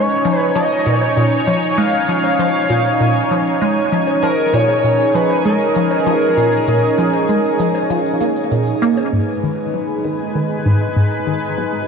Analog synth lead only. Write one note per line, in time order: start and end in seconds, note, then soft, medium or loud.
0.00 0.38 C#5 loud
0.38 0.51 B4 loud
0.55 0.99 D#5 loud
0.99 1.13 C#5 loud
1.47 1.79 C#5 loud
1.78 3.61 F5 loud
4.23 4.55 A#4 loud
4.53 5.16 C#5 loud
5.15 5.45 B4 loud
5.45 8.47 A#4 loud